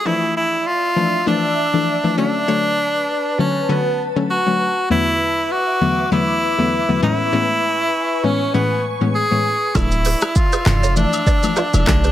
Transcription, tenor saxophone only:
X:1
M:4/4
L:1/8
Q:"Swing 16ths" 1/4=99
K:Dlyd
V:1 name="Tenor saxophone"
E E =F2 D3 D- | D3 C B, z F2 | E2 F2 E3 E- | E3 C B, z G2 |
E2 =F2 D3 D |]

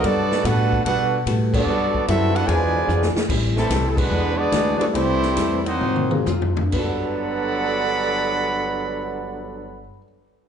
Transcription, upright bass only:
X:1
M:4/4
L:1/8
Q:"Swing" 1/4=141
K:G
V:1 name="Upright bass" clef=bass
G,,2 A,,2 B,,2 A,,2 | G,,2 F,,2 E,,2 =F,, z | A,,,2 C,,2 E,,2 D,, z | C,,2 E,,2 _A,,2 =F,,2 |
G,,,8- | G,,,8 |]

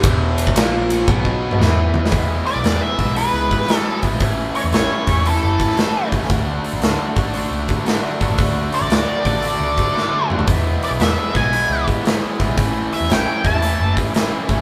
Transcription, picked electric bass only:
X:1
M:4/4
L:1/16
Q:"Swing" 1/4=115
K:Emix
V:1 name="Picked electric bass" clef=bass
E,,,4 ^A,,,4 B,,,4 E,,4 | E,,2 z B,,, E,, z B,,,3 C,,2 z4 ^A,,, | A,,,2 z E,, A,,, z E,,3 F,,,2 z4 A,,, | D,,2 z A,,, D,, z A,,,3 C,,2 z4 A,,, |
D,,2 z A,,, D,, z A,,,3 C,,2 z4 D,, | E,,2 z B,,, E,, z B,,,3 C,,2 z4 B,,, | A,,,2 z E,, A,,, z E,,3 F,,,2 z4 C,, |]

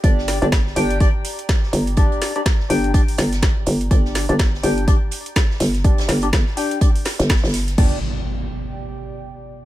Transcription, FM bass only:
X:1
M:4/4
L:1/16
Q:"Swing 16ths" 1/4=124
K:Gm
V:1 name="FM bass" clef=bass
G,,,3 G,,,3 G,,,4 z4 G,,,2- | G,,,2 z4 G,,,4 G,,,4 G,,,2 | G,,,3 G,,,3 G,,,4 z4 G,,,2- | G,,,2 G,,,2 G,,, z6 G,,,2 G,,,3 |
G,,,2 z12 z2 |]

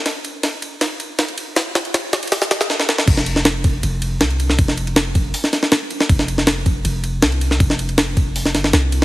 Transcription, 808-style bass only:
X:1
M:4/4
L:1/8
Q:1/4=159
K:Cphr
V:1 name="808-style bass" clef=bass
z8 | z8 | F,,,4 F,,,2 C,,2 | F,,,4 z4 |
F,,,4 F,,,2 C,,2 | F,,,4- F,,, G,,, C,,2 |]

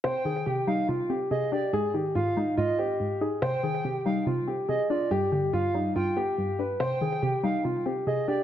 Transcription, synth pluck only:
X:1
M:4/4
L:1/8
Q:1/4=142
K:Cm
V:1 name="Synth pluck" clef=bass
C, E, C, G, C, C C, D | A,, E, A,, A, A,, C A,, E | C, E, C, G, C, C C, D | G,, D, G,, G, G,, =B, G,, D |
C, E, C, G, C, C C, D |]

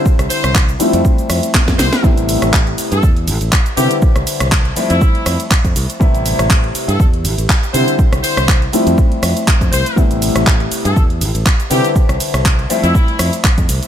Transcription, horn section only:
X:1
M:4/4
L:1/16
Q:"Swing 16ths" 1/4=121
K:Am
V:1 name="Horn section"
z2 c3 z8 z c2 | z6 z A2 z4 z G2 | z6 z E4 z4 z | z6 z A2 z4 z c2 |
z2 c3 z8 z c2 | z6 z A2 z4 z G2 | z6 z E4 z4 z |]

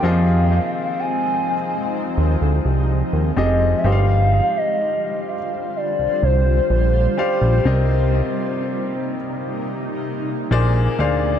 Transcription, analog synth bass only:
X:1
M:4/4
L:1/16
Q:1/4=63
K:Cm
V:1 name="Analog synth bass" clef=bass
F,,3 z6 E,, D,, C,,2 E,, F,,,2 | G,,,3 z6 C,, C,,2 B,,,2 z B,,, | C,,3 z8 z B,,,2 D,,2 |]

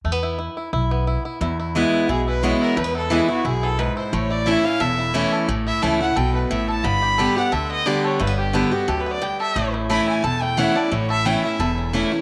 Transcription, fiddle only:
X:1
M:4/4
L:1/8
Q:"Swing" 1/4=177
K:Amix
V:1 name="Fiddle"
z8 | z4 ^G B c _B | B A ^G F G A B =c | c d e =f e3 z |
z e a f g B e a | b3 f e ^d =d c | B G E F (3G B d g e- | e z b ^g a =g f d |
c e g e3 z2 |]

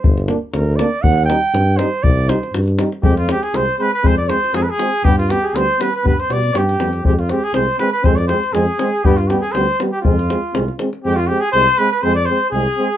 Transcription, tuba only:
X:1
M:2/4
L:1/8
Q:"Swing 16ths" 1/4=120
K:none
V:1 name="Tuba" clef=bass
G,,,2 D,,2 | _E,,2 G,,2 | C,,2 G,,2 | F,,2 C,, z |
F,,2 F,, z | G,,2 D,, z | G,, B,, G,, F,, | F,,2 C,, z |
F,,2 F,, z | G,,2 D,, z | F,,2 C,, z | F,,2 C,, z |
F,,2 C,, z |]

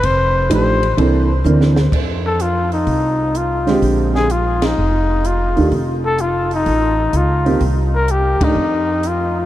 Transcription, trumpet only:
X:1
M:4/4
L:1/8
Q:"Swing" 1/4=127
K:Fmix
V:1 name="Trumpet"
c2 c2 z4 | z A F E3 F2 | z _A F E3 F2 | z A F E3 F2 |
z B G E3 F2 |]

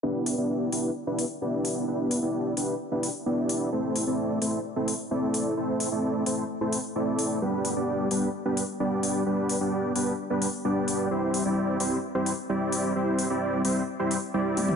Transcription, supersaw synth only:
X:1
M:4/4
L:1/16
Q:1/4=130
K:Em
V:1 name="Supersaw synth"
[B,DEGB]3 [B,DEGd]3 [B,DEGB]2 z [B,DEGB]2 z [B,DEGd]4 | [B,DEGB]3 [B,DEGd]3 [B,DEGB]2 z [B,DEGB]2 z [B,DEGd]4 | [A,CEAc]3 [A,CEAd]3 [A,CEAc]2 z [A,CEAc]2 z [A,CEAd]4 | [A,CEAc]3 [A,CEAd]3 [A,CEAc]2 z [A,CEAc]2 z [A,CEAd]4 |
[G,B,DGB]3 [G,B,DGd]3 [G,B,DGB]2 z [G,B,DGB]2 z [G,B,DGd]4 | [G,B,DGB]3 [G,B,DGd]3 [G,B,DGB]2 z [G,B,DGB]2 z [G,B,DGd]4 | [G,CEGc]3 [G,CEGd]3 [G,CEGc]2 z [G,CEGc]2 z [G,CEGd]4 | [G,CEGc]3 [G,CEGd]3 [G,CEGc]2 z [G,CEGc]2 z [G,CEGd]4 |]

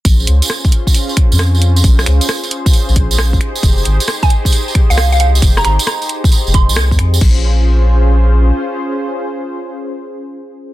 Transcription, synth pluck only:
X:1
M:4/4
L:1/16
Q:"Swing 16ths" 1/4=134
K:Bbdor
V:1 name="Synth pluck"
z16 | z16 | z4 z a2 z4 f f f f z | z b b z b6 c'3 z3 |
z16 | z16 |]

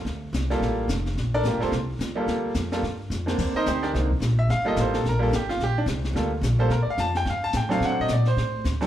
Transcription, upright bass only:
X:1
M:4/4
L:1/8
Q:"Swing" 1/4=216
K:Gm
V:1 name="Upright bass" clef=bass
D,,2 C,,2 A,,,2 F,,,2 | B,,,2 (3A,,, G,,, F,,, C,,2 ^C,,2 | D,,2 F,,2 G,,2 F,,2 | E,, z D,,2 C,,2 B,,,2 |
G,,,2 A,,,2 B,,,2 G,,,2 | B,,,2 C,,2 D,,2 B,,,2 | B,, z F,,2 G,,2 A,,2 | (3D, C, A,, B,,2 A,,2 D,,2 |]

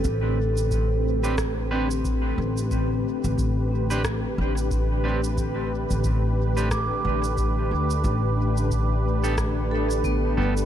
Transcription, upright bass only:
X:1
M:4/4
L:1/16
Q:"Swing 16ths" 1/4=90
K:Am
V:1 name="Upright bass" clef=bass
A,,,12- A,,,2 A,,,2- | A,,,2 z A,,,6 z A,,,6- | A,,,3 A,,,6 z A,,,4 D,,2 | A,,,12- A,,,2 G,,,2 |]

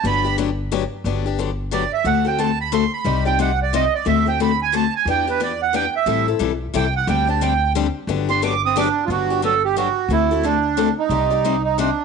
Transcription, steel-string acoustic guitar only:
X:1
M:3/4
L:1/16
Q:"Swing" 1/4=179
K:G
V:1 name="Steel-string acoustic guitar"
[D,F,B,DG]2 [B,DG]2 [D,F,B,DG] z3 [D,F,B,DG] z3 | [D,F,B,DG]2 [B,DG]2 [D,F,B,DG] z3 [D,F,B,DG] z3 | [D,A,CFA]2 [CFA]2 [D,A,CFA] z3 [D,A,CFA] z3 | [C,G,C_EGd]2 [CEGd]2 [C,G,CEGd] z3 [C,G,CEGd] z3 |
[D,A,CFA]2 [CFA]2 [D,A,CFA] z3 [D,A,CFA] z3 | [E,B,DG]2 [B,DG]2 [E,B,DG] z3 [E,B,DG] z3 | [E,G,CEA]2 [CEA]2 [E,G,CEA] z3 [E,G,CEA] z3 | [D,G,CDG]2 [CDG]2 [D,G,CDG] z3 [D,G,CDG] z3 |
[D,F,B,DG]2 [B,DG]2 [D,F,B,DG] z3 [D,F,B,DG] z3 | [D,F,B,DG]2 [B,DG]2 [D,F,B,DG] z3 [D,F,B,DG] z3 | [D,A,CFA]2 [CFA]2 [D,A,CFA] z3 [D,A,CFA] z3 | [C,G,C_EGd]2 [CEGd]2 [C,G,CEGd] z3 [C,G,CEGd] z3 |]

